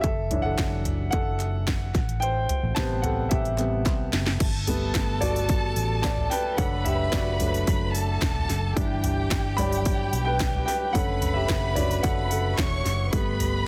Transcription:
0.01 F#1 A4 E5, kick, closed hi-hat
0.30 E3 F#3 D4, closed hi-hat, floor tom
0.42 F#1 A4 F#5
0.58 F#1, kick, snare, clap, closed hi-hat
0.85 closed hi-hat, floor tom
1.11 F#1 A4 F#5, kick, closed hi-hat
1.40 clap, closed hi-hat
1.68 kick, snare, clap, closed hi-hat
1.94 A1, kick, snare, closed hi-hat
2.09 closed hi-hat
2.20 C5 G5, closed hi-hat
2.49 closed hi-hat, floor tom
2.63 A1
2.75 A1 C3 G3 B3 C5 A5, kick, snare, clap, closed hi-hat
3.02 A4 F#5, closed hi-hat, floor tom
3.29 A1 G4 E5, kick, closed hi-hat
3.45 closed hi-hat
3.58 C3 G3 B3, clap, closed hi-hat
3.86 C2, kick, snare, clap, closed hi-hat
4.13 F#1, snare, closed hi-hat
4.27 snare
4.40 G1 A4 A5, kick, open hi-hat, crash
4.67 G3 A3 B3, floor tom, open hi-hat
4.95 G1, kick, snare, clap, open hi-hat
5.21 F#4 D5, floor tom, open hi-hat
5.36 open hi-hat
5.49 kick, open hi-hat
5.76 A1, open hi-hat
6.02 D5 A5, kick, snare, clap, open hi-hat
6.17 floor tom
6.30 B4 G5, snare, open hi-hat
6.57 F#1 F#3 A3 D4 A4 B4 F#5 B5, kick, open hi-hat
6.84 G4 E5, floor tom, open hi-hat
7.12 F#1 F#4 D5, kick, snare, clap, open hi-hat
7.40 F#3 A3 D4, floor tom, open hi-hat
7.54 open hi-hat
7.67 F#1, kick, open hi-hat
7.94 A4 A5, open hi-hat
8.22 E1, kick, snare, clap, open hi-hat
8.35 floor tom
8.49 F#1, snare, open hi-hat
8.76 G1 E3 G3 D4 G4 G5, kick, open hi-hat
9.04 floor tom, open hi-hat
9.31 G1, kick, snare, clap, open hi-hat
9.57 F#3 G3 D4 D5 B5, floor tom, open hi-hat
9.72 open hi-hat
9.85 kick, open hi-hat
10.13 B1, open hi-hat
10.25 B4 G5
10.40 kick, snare, clap, open hi-hat
10.54 floor tom
10.66 B4 G5, snare, open hi-hat
10.93 F#1 D3 A3 C#4 A4 B4 F#5 B5, kick, open hi-hat
11.22 floor tom, open hi-hat
11.34 G4 E5
11.49 F#1, kick, snare, clap, open hi-hat
11.75 D3 A3 C#4 F#4 D5, floor tom, open hi-hat
11.91 open hi-hat
12.03 F#1 A4 F#5, kick, open hi-hat
12.30 A4 F#5, open hi-hat
12.58 E1 C#5 C#6, kick, snare, clap, open hi-hat
12.85 F#1, snare, open hi-hat
13.12 G3 A3 B3 B4 B5, kick, open hi-hat
13.40 floor tom, open hi-hat

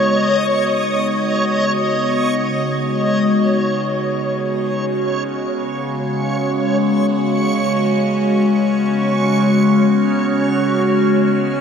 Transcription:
Already playing: C#3 G#3 B3 D#4 F#4 C#5 D#5
3.23 C#6
4.15 C#4
9.49 F6

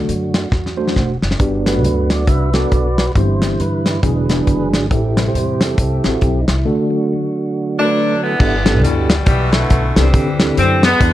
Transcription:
Already playing: D3 F#3 A3 D4 F#4 A4
0.09 F#2, closed hi-hat
0.34 snare, closed hi-hat
0.52 E2, kick, snare
0.66 snare
0.77 F#3 A3 D4 F#4 C5
0.88 snare
0.96 E1, kick, snare
1.22 F#1, snare
1.31 snare
1.39 G1 G2 B3 D4 F#4 G4, kick, closed hi-hat
1.66 F#3 A3 B3 D4 F#4 B4, snare, closed hi-hat
1.84 D2, closed hi-hat
2.10 D5, snare, closed hi-hat
2.27 C2 B4 E5, kick, closed hi-hat
2.54 B3 D4 F#4 A4 B4 D5, snare, closed hi-hat
2.72 B1, kick, closed hi-hat
2.98 D5, snare, closed hi-hat
3.15 G1 G2 D3 E3 G3 B3 C4 D#4 E4 G4 C5, kick, closed hi-hat
3.21 E4
3.42 snare, closed hi-hat
3.60 G2 E4 B4, closed hi-hat
3.86 snare, closed hi-hat
4.03 E1 D3 E3 F#3 G#3 B3 D4 E4 G#4 B4, kick, closed hi-hat
4.29 B3 D4 E4 G#4, snare, closed hi-hat
4.47 F#1, kick, closed hi-hat
4.74 G#1, snare, closed hi-hat
4.91 A1 A2 C4 E4 G4 A4, kick, closed hi-hat
5.17 C3 G3 B4, snare, closed hi-hat
5.28 E4 G4 C5
5.34 E2, closed hi-hat
5.61 C4 E4 A4, snare, closed hi-hat
5.78 C2, kick, closed hi-hat
6.04 A1 C4 E4 F#4 G4 A4, snare, closed hi-hat
6.21 B1 G4, kick, closed hi-hat
6.41 D#4
6.48 C2 E4, snare, closed hi-hat
6.65 D3 A3 D4 F#4 A4
6.90 D3 F#3 A3
7.79 F#3 A3 D4 F#4 A#4
7.85 B4
8.22 D3 E3 B3
8.40 G1 G2 B3 D4 E4 G4 A4, kick, crash
8.65 B3 D4 E4 G4 A4, snare, closed hi-hat
8.82 D2 B2 E3 G3, closed hi-hat
9.10 snare, closed hi-hat
9.26 B1 B2 E3 G3, kick, closed hi-hat
9.51 D3 E3 A3, snare, closed hi-hat
9.70 B1, kick, closed hi-hat
9.96 C2 E3 G3 B3 C4 D4 E4 G4 A4, snare, closed hi-hat
10.13 D2 D3 C4 D4 E4 G4 A4, kick, closed hi-hat
10.39 C4 D4 E4 G4 A4, snare, closed hi-hat
10.57 F#2 C4, closed hi-hat
10.83 D3 G#3 B3, snare, closed hi-hat
11.00 E2 E3 B3 D4 E4 G#4 B4, kick, closed hi-hat

